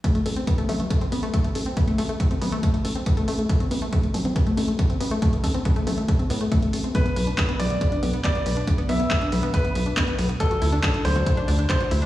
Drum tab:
HH |xxoxxxoxxxoxxxox|xxoxxxoxxxoxxxox|xxoxxxoxxxoxxxox|xxoxxxoxxxoxxxox|
CP |----------------|----------------|----------------|----------------|
T2 |------oo--------|------o---------|------oo--------|------o---------|
BD |o---o---o---o---|o---o---o---o---|o---o---o---o---|o-o-o---o---o---|

HH |xxoxxxoxxxoxxxox|xxoxxxoxxxoxxxox|xxoxxxoxxxoxxxox|
CP |----x-------x---|----x-------x---|----x-------x---|
T2 |------oo--------|------o---------|------oo--------|
BD |o---o---o---o---|o---o---o---o---|o---o---o---o---|